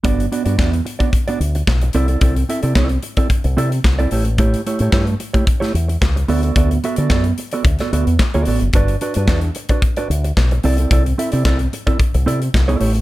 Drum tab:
HH |xxxx-xxxxxxx-xxx|xxxx-xxxxxxx-xox|xxxx-xxxxxxx-xox|xxxx-xxxxxxx-xox|
CP |----x-------x---|----x-------x---|----x-------x---|----x-------x---|
SD |----o-------o---|----o-------o---|----o----o--o---|----o----o--o---|
BD |o---o--oo---o---|o---o--oo---o---|o---o--oo---o---|o---o---o---o---|

HH |xxxx-xxxxxxx-xox|xxxx-xxxxxxx-xox|
CP |----x-------x---|----x-------x---|
SD |----o-------o---|----o-------o---|
BD |o---o--oo---o---|o---o--oo---o---|